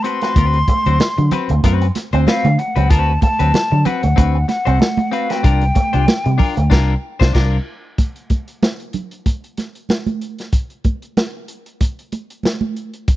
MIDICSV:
0, 0, Header, 1, 8, 480
1, 0, Start_track
1, 0, Tempo, 636267
1, 269, Time_signature, 4, 2, 24, 8
1, 9932, End_track
2, 0, Start_track
2, 0, Title_t, "Flute"
2, 0, Program_c, 0, 73
2, 21, Note_on_c, 0, 84, 118
2, 1466, Note_off_c, 0, 84, 0
2, 1711, Note_on_c, 0, 77, 108
2, 1954, Note_on_c, 0, 78, 104
2, 1965, Note_off_c, 0, 77, 0
2, 2189, Note_on_c, 0, 81, 115
2, 2200, Note_off_c, 0, 78, 0
2, 2429, Note_off_c, 0, 81, 0
2, 2435, Note_on_c, 0, 81, 111
2, 2912, Note_on_c, 0, 78, 98
2, 2923, Note_off_c, 0, 81, 0
2, 3384, Note_off_c, 0, 78, 0
2, 3388, Note_on_c, 0, 78, 95
2, 3866, Note_on_c, 0, 77, 89
2, 3878, Note_off_c, 0, 78, 0
2, 4006, Note_on_c, 0, 79, 101
2, 4017, Note_off_c, 0, 77, 0
2, 5440, Note_off_c, 0, 79, 0
2, 9932, End_track
3, 0, Start_track
3, 0, Title_t, "Clean electric guitar"
3, 0, Program_c, 1, 27
3, 29, Note_on_c, 1, 60, 59
3, 37, Note_on_c, 1, 66, 62
3, 44, Note_on_c, 1, 71, 72
3, 146, Note_off_c, 1, 60, 0
3, 150, Note_off_c, 1, 66, 0
3, 154, Note_off_c, 1, 71, 0
3, 171, Note_on_c, 1, 71, 77
3, 180, Note_on_c, 1, 66, 63
3, 182, Note_on_c, 1, 60, 53
3, 260, Note_off_c, 1, 71, 0
3, 264, Note_off_c, 1, 66, 0
3, 265, Note_off_c, 1, 60, 0
3, 275, Note_on_c, 1, 60, 88
3, 282, Note_on_c, 1, 66, 80
3, 287, Note_on_c, 1, 71, 93
3, 434, Note_off_c, 1, 60, 0
3, 437, Note_off_c, 1, 66, 0
3, 440, Note_off_c, 1, 71, 0
3, 652, Note_on_c, 1, 72, 75
3, 656, Note_on_c, 1, 66, 61
3, 662, Note_on_c, 1, 60, 64
3, 740, Note_off_c, 1, 72, 0
3, 742, Note_off_c, 1, 66, 0
3, 745, Note_off_c, 1, 60, 0
3, 993, Note_on_c, 1, 60, 84
3, 998, Note_on_c, 1, 66, 83
3, 1005, Note_on_c, 1, 71, 109
3, 1125, Note_off_c, 1, 71, 0
3, 1133, Note_off_c, 1, 66, 0
3, 1138, Note_off_c, 1, 60, 0
3, 1237, Note_on_c, 1, 60, 81
3, 1245, Note_on_c, 1, 66, 95
3, 1250, Note_on_c, 1, 71, 87
3, 1395, Note_off_c, 1, 60, 0
3, 1399, Note_off_c, 1, 66, 0
3, 1401, Note_off_c, 1, 71, 0
3, 1607, Note_on_c, 1, 72, 65
3, 1613, Note_on_c, 1, 66, 57
3, 1618, Note_on_c, 1, 60, 58
3, 1698, Note_off_c, 1, 72, 0
3, 1701, Note_off_c, 1, 60, 0
3, 1701, Note_off_c, 1, 66, 0
3, 1710, Note_on_c, 1, 60, 82
3, 1716, Note_on_c, 1, 66, 91
3, 1721, Note_on_c, 1, 71, 95
3, 1856, Note_off_c, 1, 60, 0
3, 1859, Note_off_c, 1, 66, 0
3, 1862, Note_off_c, 1, 71, 0
3, 2079, Note_on_c, 1, 71, 62
3, 2085, Note_on_c, 1, 66, 61
3, 2094, Note_on_c, 1, 60, 57
3, 2174, Note_off_c, 1, 71, 0
3, 2176, Note_off_c, 1, 60, 0
3, 2177, Note_off_c, 1, 66, 0
3, 2185, Note_on_c, 1, 60, 82
3, 2191, Note_on_c, 1, 66, 89
3, 2200, Note_on_c, 1, 71, 92
3, 2348, Note_off_c, 1, 60, 0
3, 2351, Note_off_c, 1, 66, 0
3, 2356, Note_off_c, 1, 71, 0
3, 2559, Note_on_c, 1, 71, 66
3, 2565, Note_on_c, 1, 66, 68
3, 2573, Note_on_c, 1, 60, 56
3, 2653, Note_off_c, 1, 71, 0
3, 2656, Note_off_c, 1, 66, 0
3, 2657, Note_off_c, 1, 60, 0
3, 2906, Note_on_c, 1, 60, 75
3, 2912, Note_on_c, 1, 66, 78
3, 2917, Note_on_c, 1, 71, 89
3, 3031, Note_off_c, 1, 71, 0
3, 3040, Note_off_c, 1, 66, 0
3, 3053, Note_off_c, 1, 60, 0
3, 3138, Note_on_c, 1, 60, 77
3, 3147, Note_on_c, 1, 66, 81
3, 3150, Note_on_c, 1, 71, 78
3, 3289, Note_off_c, 1, 60, 0
3, 3293, Note_off_c, 1, 66, 0
3, 3295, Note_off_c, 1, 71, 0
3, 3511, Note_on_c, 1, 72, 68
3, 3518, Note_on_c, 1, 66, 64
3, 3525, Note_on_c, 1, 60, 55
3, 3608, Note_off_c, 1, 72, 0
3, 3611, Note_off_c, 1, 60, 0
3, 3612, Note_off_c, 1, 66, 0
3, 3859, Note_on_c, 1, 60, 79
3, 3867, Note_on_c, 1, 66, 68
3, 3871, Note_on_c, 1, 71, 87
3, 3979, Note_off_c, 1, 60, 0
3, 3983, Note_off_c, 1, 66, 0
3, 3985, Note_off_c, 1, 71, 0
3, 3994, Note_on_c, 1, 71, 65
3, 3999, Note_on_c, 1, 66, 69
3, 4008, Note_on_c, 1, 60, 50
3, 4089, Note_off_c, 1, 71, 0
3, 4091, Note_off_c, 1, 66, 0
3, 4095, Note_off_c, 1, 60, 0
3, 4098, Note_on_c, 1, 62, 89
3, 4104, Note_on_c, 1, 65, 95
3, 4112, Note_on_c, 1, 70, 102
3, 4247, Note_off_c, 1, 62, 0
3, 4251, Note_off_c, 1, 65, 0
3, 4255, Note_off_c, 1, 70, 0
3, 4473, Note_on_c, 1, 72, 65
3, 4478, Note_on_c, 1, 65, 69
3, 4484, Note_on_c, 1, 62, 56
3, 4568, Note_off_c, 1, 62, 0
3, 4568, Note_off_c, 1, 72, 0
3, 4570, Note_off_c, 1, 65, 0
3, 4811, Note_on_c, 1, 62, 77
3, 4815, Note_on_c, 1, 65, 81
3, 4821, Note_on_c, 1, 70, 89
3, 4938, Note_off_c, 1, 70, 0
3, 4947, Note_off_c, 1, 65, 0
3, 4963, Note_off_c, 1, 62, 0
3, 5053, Note_on_c, 1, 62, 97
3, 5061, Note_on_c, 1, 65, 101
3, 5064, Note_on_c, 1, 70, 102
3, 5225, Note_off_c, 1, 62, 0
3, 5230, Note_off_c, 1, 65, 0
3, 5232, Note_off_c, 1, 70, 0
3, 5428, Note_on_c, 1, 72, 101
3, 5435, Note_on_c, 1, 65, 98
3, 5440, Note_on_c, 1, 62, 105
3, 5521, Note_off_c, 1, 62, 0
3, 5522, Note_off_c, 1, 72, 0
3, 5525, Note_off_c, 1, 65, 0
3, 5530, Note_on_c, 1, 62, 91
3, 5539, Note_on_c, 1, 65, 94
3, 5543, Note_on_c, 1, 70, 82
3, 5703, Note_off_c, 1, 62, 0
3, 5708, Note_off_c, 1, 65, 0
3, 5711, Note_off_c, 1, 70, 0
3, 9932, End_track
4, 0, Start_track
4, 0, Title_t, "Clean electric guitar"
4, 0, Program_c, 2, 27
4, 167, Note_on_c, 2, 57, 66
4, 246, Note_off_c, 2, 57, 0
4, 519, Note_on_c, 2, 57, 88
4, 618, Note_off_c, 2, 57, 0
4, 654, Note_on_c, 2, 54, 62
4, 731, Note_off_c, 2, 54, 0
4, 891, Note_on_c, 2, 54, 75
4, 969, Note_off_c, 2, 54, 0
4, 1134, Note_on_c, 2, 57, 62
4, 1211, Note_off_c, 2, 57, 0
4, 1236, Note_on_c, 2, 57, 84
4, 1336, Note_off_c, 2, 57, 0
4, 1613, Note_on_c, 2, 60, 70
4, 1690, Note_off_c, 2, 60, 0
4, 1851, Note_on_c, 2, 57, 86
4, 1929, Note_off_c, 2, 57, 0
4, 2089, Note_on_c, 2, 54, 71
4, 2168, Note_off_c, 2, 54, 0
4, 2436, Note_on_c, 2, 57, 83
4, 2536, Note_off_c, 2, 57, 0
4, 2568, Note_on_c, 2, 54, 72
4, 2646, Note_off_c, 2, 54, 0
4, 2806, Note_on_c, 2, 54, 75
4, 2886, Note_off_c, 2, 54, 0
4, 3044, Note_on_c, 2, 57, 69
4, 3124, Note_off_c, 2, 57, 0
4, 3148, Note_on_c, 2, 57, 82
4, 3250, Note_off_c, 2, 57, 0
4, 3521, Note_on_c, 2, 60, 79
4, 3601, Note_off_c, 2, 60, 0
4, 3626, Note_on_c, 2, 57, 62
4, 3729, Note_off_c, 2, 57, 0
4, 4001, Note_on_c, 2, 57, 67
4, 4081, Note_off_c, 2, 57, 0
4, 4345, Note_on_c, 2, 57, 81
4, 4447, Note_off_c, 2, 57, 0
4, 4481, Note_on_c, 2, 55, 61
4, 4561, Note_off_c, 2, 55, 0
4, 4721, Note_on_c, 2, 55, 80
4, 4800, Note_off_c, 2, 55, 0
4, 4957, Note_on_c, 2, 57, 65
4, 5038, Note_off_c, 2, 57, 0
4, 9932, End_track
5, 0, Start_track
5, 0, Title_t, "Fingered electric bass"
5, 0, Program_c, 3, 33
5, 271, Note_on_c, 3, 38, 97
5, 464, Note_off_c, 3, 38, 0
5, 650, Note_on_c, 3, 38, 85
5, 733, Note_off_c, 3, 38, 0
5, 892, Note_on_c, 3, 50, 104
5, 974, Note_off_c, 3, 50, 0
5, 1131, Note_on_c, 3, 38, 85
5, 1213, Note_off_c, 3, 38, 0
5, 1235, Note_on_c, 3, 42, 108
5, 1426, Note_off_c, 3, 42, 0
5, 1607, Note_on_c, 3, 38, 97
5, 1691, Note_off_c, 3, 38, 0
5, 1845, Note_on_c, 3, 50, 86
5, 1930, Note_off_c, 3, 50, 0
5, 2085, Note_on_c, 3, 37, 94
5, 2192, Note_off_c, 3, 37, 0
5, 2192, Note_on_c, 3, 38, 104
5, 2384, Note_off_c, 3, 38, 0
5, 2564, Note_on_c, 3, 38, 87
5, 2649, Note_off_c, 3, 38, 0
5, 2806, Note_on_c, 3, 50, 100
5, 2890, Note_off_c, 3, 50, 0
5, 3046, Note_on_c, 3, 38, 71
5, 3129, Note_off_c, 3, 38, 0
5, 3153, Note_on_c, 3, 38, 106
5, 3344, Note_off_c, 3, 38, 0
5, 3523, Note_on_c, 3, 36, 88
5, 3607, Note_off_c, 3, 36, 0
5, 4107, Note_on_c, 3, 36, 99
5, 4299, Note_off_c, 3, 36, 0
5, 4481, Note_on_c, 3, 36, 89
5, 4565, Note_off_c, 3, 36, 0
5, 4721, Note_on_c, 3, 48, 100
5, 4805, Note_off_c, 3, 48, 0
5, 4960, Note_on_c, 3, 38, 73
5, 5044, Note_off_c, 3, 38, 0
5, 5064, Note_on_c, 3, 36, 103
5, 5231, Note_off_c, 3, 36, 0
5, 5440, Note_on_c, 3, 36, 99
5, 5528, Note_off_c, 3, 36, 0
5, 5545, Note_on_c, 3, 36, 106
5, 5711, Note_off_c, 3, 36, 0
5, 9932, End_track
6, 0, Start_track
6, 0, Title_t, "Muted clean electric guitar strokes"
6, 408, Note_on_c, 9, 29, 43
6, 484, Note_off_c, 9, 29, 0
6, 518, Note_on_c, 9, 29, 48
6, 593, Note_off_c, 9, 29, 0
6, 753, Note_on_c, 9, 29, 41
6, 828, Note_off_c, 9, 29, 0
6, 887, Note_on_c, 9, 29, 42
6, 962, Note_off_c, 9, 29, 0
6, 999, Note_on_c, 9, 29, 47
6, 1074, Note_off_c, 9, 29, 0
6, 1134, Note_on_c, 9, 29, 34
6, 1209, Note_off_c, 9, 29, 0
6, 1372, Note_on_c, 9, 29, 47
6, 1447, Note_off_c, 9, 29, 0
6, 1477, Note_on_c, 9, 29, 52
6, 1552, Note_off_c, 9, 29, 0
6, 1949, Note_on_c, 9, 29, 37
6, 2025, Note_off_c, 9, 29, 0
6, 2328, Note_on_c, 9, 29, 43
6, 2403, Note_off_c, 9, 29, 0
6, 2424, Note_on_c, 9, 29, 48
6, 2499, Note_off_c, 9, 29, 0
6, 2804, Note_on_c, 9, 29, 46
6, 2879, Note_off_c, 9, 29, 0
6, 2911, Note_on_c, 9, 29, 43
6, 2986, Note_off_c, 9, 29, 0
6, 3040, Note_on_c, 9, 29, 42
6, 3116, Note_off_c, 9, 29, 0
6, 3282, Note_on_c, 9, 29, 49
6, 3358, Note_off_c, 9, 29, 0
6, 3381, Note_on_c, 9, 29, 52
6, 3457, Note_off_c, 9, 29, 0
6, 3620, Note_on_c, 9, 29, 36
6, 3695, Note_off_c, 9, 29, 0
6, 3755, Note_on_c, 9, 29, 45
6, 3831, Note_off_c, 9, 29, 0
6, 4240, Note_on_c, 9, 29, 40
6, 4316, Note_off_c, 9, 29, 0
6, 4337, Note_on_c, 9, 29, 42
6, 4412, Note_off_c, 9, 29, 0
6, 4577, Note_on_c, 9, 29, 34
6, 4652, Note_off_c, 9, 29, 0
6, 4712, Note_on_c, 9, 29, 33
6, 4787, Note_off_c, 9, 29, 0
6, 4825, Note_on_c, 9, 29, 41
6, 4901, Note_off_c, 9, 29, 0
6, 4947, Note_on_c, 9, 29, 45
6, 5022, Note_off_c, 9, 29, 0
6, 9932, End_track
7, 0, Start_track
7, 0, Title_t, "Muted fingered electric bass strokes"
7, 2673, Note_on_c, 9, 29, 46
7, 2749, Note_off_c, 9, 29, 0
7, 4586, Note_on_c, 9, 29, 47
7, 4662, Note_off_c, 9, 29, 0
7, 9932, End_track
8, 0, Start_track
8, 0, Title_t, "Drums"
8, 33, Note_on_c, 9, 42, 64
8, 108, Note_off_c, 9, 42, 0
8, 162, Note_on_c, 9, 42, 49
8, 172, Note_on_c, 9, 38, 34
8, 237, Note_off_c, 9, 42, 0
8, 247, Note_off_c, 9, 38, 0
8, 271, Note_on_c, 9, 36, 121
8, 271, Note_on_c, 9, 42, 77
8, 275, Note_on_c, 9, 62, 39
8, 347, Note_off_c, 9, 36, 0
8, 347, Note_off_c, 9, 42, 0
8, 350, Note_off_c, 9, 62, 0
8, 403, Note_on_c, 9, 42, 30
8, 478, Note_off_c, 9, 42, 0
8, 510, Note_on_c, 9, 42, 55
8, 512, Note_on_c, 9, 36, 87
8, 512, Note_on_c, 9, 62, 51
8, 586, Note_off_c, 9, 42, 0
8, 587, Note_off_c, 9, 36, 0
8, 587, Note_off_c, 9, 62, 0
8, 647, Note_on_c, 9, 42, 43
8, 722, Note_off_c, 9, 42, 0
8, 754, Note_on_c, 9, 63, 85
8, 759, Note_on_c, 9, 38, 109
8, 830, Note_off_c, 9, 63, 0
8, 835, Note_off_c, 9, 38, 0
8, 889, Note_on_c, 9, 42, 36
8, 965, Note_off_c, 9, 42, 0
8, 990, Note_on_c, 9, 42, 76
8, 993, Note_on_c, 9, 64, 91
8, 1065, Note_off_c, 9, 42, 0
8, 1069, Note_off_c, 9, 64, 0
8, 1124, Note_on_c, 9, 42, 44
8, 1200, Note_off_c, 9, 42, 0
8, 1235, Note_on_c, 9, 62, 49
8, 1236, Note_on_c, 9, 36, 85
8, 1236, Note_on_c, 9, 42, 87
8, 1311, Note_off_c, 9, 36, 0
8, 1311, Note_off_c, 9, 62, 0
8, 1312, Note_off_c, 9, 42, 0
8, 1370, Note_on_c, 9, 42, 38
8, 1445, Note_off_c, 9, 42, 0
8, 1472, Note_on_c, 9, 42, 82
8, 1476, Note_on_c, 9, 62, 54
8, 1480, Note_on_c, 9, 38, 31
8, 1548, Note_off_c, 9, 42, 0
8, 1552, Note_off_c, 9, 62, 0
8, 1556, Note_off_c, 9, 38, 0
8, 1605, Note_on_c, 9, 42, 43
8, 1680, Note_off_c, 9, 42, 0
8, 1711, Note_on_c, 9, 63, 64
8, 1719, Note_on_c, 9, 38, 94
8, 1786, Note_off_c, 9, 63, 0
8, 1794, Note_off_c, 9, 38, 0
8, 1846, Note_on_c, 9, 63, 76
8, 1847, Note_on_c, 9, 42, 34
8, 1922, Note_off_c, 9, 42, 0
8, 1922, Note_off_c, 9, 63, 0
8, 1952, Note_on_c, 9, 42, 60
8, 2028, Note_off_c, 9, 42, 0
8, 2083, Note_on_c, 9, 42, 46
8, 2158, Note_off_c, 9, 42, 0
8, 2191, Note_on_c, 9, 42, 82
8, 2192, Note_on_c, 9, 36, 118
8, 2192, Note_on_c, 9, 62, 37
8, 2266, Note_off_c, 9, 42, 0
8, 2267, Note_off_c, 9, 36, 0
8, 2268, Note_off_c, 9, 62, 0
8, 2428, Note_on_c, 9, 42, 57
8, 2430, Note_on_c, 9, 62, 54
8, 2431, Note_on_c, 9, 36, 82
8, 2503, Note_off_c, 9, 42, 0
8, 2506, Note_off_c, 9, 36, 0
8, 2506, Note_off_c, 9, 62, 0
8, 2563, Note_on_c, 9, 42, 48
8, 2638, Note_off_c, 9, 42, 0
8, 2671, Note_on_c, 9, 63, 82
8, 2679, Note_on_c, 9, 38, 119
8, 2746, Note_off_c, 9, 63, 0
8, 2754, Note_off_c, 9, 38, 0
8, 2907, Note_on_c, 9, 42, 75
8, 2912, Note_on_c, 9, 64, 86
8, 2983, Note_off_c, 9, 42, 0
8, 2988, Note_off_c, 9, 64, 0
8, 3041, Note_on_c, 9, 42, 48
8, 3116, Note_off_c, 9, 42, 0
8, 3149, Note_on_c, 9, 62, 45
8, 3151, Note_on_c, 9, 42, 93
8, 3152, Note_on_c, 9, 36, 83
8, 3225, Note_off_c, 9, 62, 0
8, 3226, Note_off_c, 9, 42, 0
8, 3227, Note_off_c, 9, 36, 0
8, 3384, Note_on_c, 9, 62, 51
8, 3386, Note_on_c, 9, 42, 81
8, 3394, Note_on_c, 9, 38, 33
8, 3460, Note_off_c, 9, 62, 0
8, 3462, Note_off_c, 9, 42, 0
8, 3470, Note_off_c, 9, 38, 0
8, 3519, Note_on_c, 9, 42, 41
8, 3595, Note_off_c, 9, 42, 0
8, 3618, Note_on_c, 9, 63, 56
8, 3634, Note_on_c, 9, 38, 100
8, 3693, Note_off_c, 9, 63, 0
8, 3710, Note_off_c, 9, 38, 0
8, 3752, Note_on_c, 9, 63, 83
8, 3761, Note_on_c, 9, 42, 33
8, 3828, Note_off_c, 9, 63, 0
8, 3837, Note_off_c, 9, 42, 0
8, 3868, Note_on_c, 9, 42, 62
8, 3943, Note_off_c, 9, 42, 0
8, 3998, Note_on_c, 9, 42, 49
8, 4008, Note_on_c, 9, 38, 33
8, 4073, Note_off_c, 9, 42, 0
8, 4083, Note_off_c, 9, 38, 0
8, 4106, Note_on_c, 9, 36, 111
8, 4107, Note_on_c, 9, 42, 75
8, 4181, Note_off_c, 9, 36, 0
8, 4182, Note_off_c, 9, 42, 0
8, 4234, Note_on_c, 9, 42, 35
8, 4310, Note_off_c, 9, 42, 0
8, 4340, Note_on_c, 9, 42, 61
8, 4344, Note_on_c, 9, 36, 78
8, 4346, Note_on_c, 9, 62, 56
8, 4415, Note_off_c, 9, 42, 0
8, 4420, Note_off_c, 9, 36, 0
8, 4421, Note_off_c, 9, 62, 0
8, 4475, Note_on_c, 9, 42, 44
8, 4551, Note_off_c, 9, 42, 0
8, 4587, Note_on_c, 9, 63, 88
8, 4590, Note_on_c, 9, 38, 107
8, 4663, Note_off_c, 9, 63, 0
8, 4666, Note_off_c, 9, 38, 0
8, 4719, Note_on_c, 9, 42, 37
8, 4795, Note_off_c, 9, 42, 0
8, 4821, Note_on_c, 9, 46, 74
8, 4826, Note_on_c, 9, 36, 88
8, 4827, Note_on_c, 9, 64, 79
8, 4896, Note_off_c, 9, 46, 0
8, 4901, Note_off_c, 9, 36, 0
8, 4902, Note_off_c, 9, 64, 0
8, 4957, Note_on_c, 9, 42, 51
8, 5032, Note_off_c, 9, 42, 0
8, 5064, Note_on_c, 9, 36, 94
8, 5065, Note_on_c, 9, 49, 74
8, 5072, Note_on_c, 9, 38, 98
8, 5140, Note_off_c, 9, 36, 0
8, 5140, Note_off_c, 9, 49, 0
8, 5147, Note_off_c, 9, 38, 0
8, 5438, Note_on_c, 9, 36, 94
8, 5445, Note_on_c, 9, 38, 93
8, 5513, Note_off_c, 9, 36, 0
8, 5521, Note_off_c, 9, 38, 0
8, 5543, Note_on_c, 9, 36, 100
8, 5544, Note_on_c, 9, 49, 72
8, 5551, Note_on_c, 9, 38, 93
8, 5619, Note_off_c, 9, 36, 0
8, 5619, Note_off_c, 9, 49, 0
8, 5626, Note_off_c, 9, 38, 0
8, 6022, Note_on_c, 9, 42, 81
8, 6023, Note_on_c, 9, 36, 99
8, 6025, Note_on_c, 9, 62, 40
8, 6097, Note_off_c, 9, 42, 0
8, 6098, Note_off_c, 9, 36, 0
8, 6100, Note_off_c, 9, 62, 0
8, 6153, Note_on_c, 9, 42, 30
8, 6229, Note_off_c, 9, 42, 0
8, 6260, Note_on_c, 9, 42, 52
8, 6262, Note_on_c, 9, 36, 76
8, 6266, Note_on_c, 9, 62, 54
8, 6335, Note_off_c, 9, 42, 0
8, 6338, Note_off_c, 9, 36, 0
8, 6341, Note_off_c, 9, 62, 0
8, 6395, Note_on_c, 9, 42, 40
8, 6470, Note_off_c, 9, 42, 0
8, 6507, Note_on_c, 9, 63, 72
8, 6510, Note_on_c, 9, 38, 96
8, 6583, Note_off_c, 9, 63, 0
8, 6586, Note_off_c, 9, 38, 0
8, 6637, Note_on_c, 9, 42, 34
8, 6713, Note_off_c, 9, 42, 0
8, 6738, Note_on_c, 9, 42, 64
8, 6746, Note_on_c, 9, 64, 78
8, 6814, Note_off_c, 9, 42, 0
8, 6821, Note_off_c, 9, 64, 0
8, 6875, Note_on_c, 9, 42, 46
8, 6950, Note_off_c, 9, 42, 0
8, 6985, Note_on_c, 9, 36, 74
8, 6985, Note_on_c, 9, 42, 85
8, 6985, Note_on_c, 9, 62, 46
8, 7060, Note_off_c, 9, 42, 0
8, 7061, Note_off_c, 9, 36, 0
8, 7061, Note_off_c, 9, 62, 0
8, 7121, Note_on_c, 9, 42, 33
8, 7196, Note_off_c, 9, 42, 0
8, 7223, Note_on_c, 9, 42, 71
8, 7228, Note_on_c, 9, 62, 42
8, 7231, Note_on_c, 9, 38, 28
8, 7299, Note_off_c, 9, 42, 0
8, 7303, Note_off_c, 9, 62, 0
8, 7307, Note_off_c, 9, 38, 0
8, 7357, Note_on_c, 9, 42, 36
8, 7433, Note_off_c, 9, 42, 0
8, 7460, Note_on_c, 9, 63, 52
8, 7468, Note_on_c, 9, 38, 90
8, 7536, Note_off_c, 9, 63, 0
8, 7543, Note_off_c, 9, 38, 0
8, 7593, Note_on_c, 9, 63, 75
8, 7596, Note_on_c, 9, 42, 31
8, 7669, Note_off_c, 9, 63, 0
8, 7671, Note_off_c, 9, 42, 0
8, 7706, Note_on_c, 9, 42, 55
8, 7781, Note_off_c, 9, 42, 0
8, 7835, Note_on_c, 9, 42, 42
8, 7845, Note_on_c, 9, 38, 32
8, 7910, Note_off_c, 9, 42, 0
8, 7920, Note_off_c, 9, 38, 0
8, 7941, Note_on_c, 9, 42, 76
8, 7942, Note_on_c, 9, 36, 97
8, 8016, Note_off_c, 9, 42, 0
8, 8018, Note_off_c, 9, 36, 0
8, 8073, Note_on_c, 9, 42, 27
8, 8148, Note_off_c, 9, 42, 0
8, 8180, Note_on_c, 9, 42, 51
8, 8183, Note_on_c, 9, 36, 84
8, 8187, Note_on_c, 9, 62, 50
8, 8255, Note_off_c, 9, 42, 0
8, 8258, Note_off_c, 9, 36, 0
8, 8262, Note_off_c, 9, 62, 0
8, 8316, Note_on_c, 9, 42, 36
8, 8391, Note_off_c, 9, 42, 0
8, 8427, Note_on_c, 9, 63, 76
8, 8430, Note_on_c, 9, 38, 91
8, 8502, Note_off_c, 9, 63, 0
8, 8506, Note_off_c, 9, 38, 0
8, 8662, Note_on_c, 9, 42, 65
8, 8738, Note_off_c, 9, 42, 0
8, 8797, Note_on_c, 9, 42, 44
8, 8873, Note_off_c, 9, 42, 0
8, 8906, Note_on_c, 9, 62, 40
8, 8908, Note_on_c, 9, 36, 76
8, 8908, Note_on_c, 9, 42, 90
8, 8982, Note_off_c, 9, 62, 0
8, 8983, Note_off_c, 9, 36, 0
8, 8983, Note_off_c, 9, 42, 0
8, 9044, Note_on_c, 9, 42, 32
8, 9119, Note_off_c, 9, 42, 0
8, 9145, Note_on_c, 9, 42, 66
8, 9148, Note_on_c, 9, 62, 47
8, 9220, Note_off_c, 9, 42, 0
8, 9223, Note_off_c, 9, 62, 0
8, 9281, Note_on_c, 9, 42, 43
8, 9357, Note_off_c, 9, 42, 0
8, 9379, Note_on_c, 9, 63, 57
8, 9395, Note_on_c, 9, 38, 90
8, 9454, Note_off_c, 9, 63, 0
8, 9471, Note_off_c, 9, 38, 0
8, 9511, Note_on_c, 9, 63, 76
8, 9587, Note_off_c, 9, 63, 0
8, 9629, Note_on_c, 9, 42, 54
8, 9705, Note_off_c, 9, 42, 0
8, 9758, Note_on_c, 9, 42, 46
8, 9833, Note_off_c, 9, 42, 0
8, 9866, Note_on_c, 9, 42, 77
8, 9867, Note_on_c, 9, 36, 110
8, 9932, Note_off_c, 9, 36, 0
8, 9932, Note_off_c, 9, 42, 0
8, 9932, End_track
0, 0, End_of_file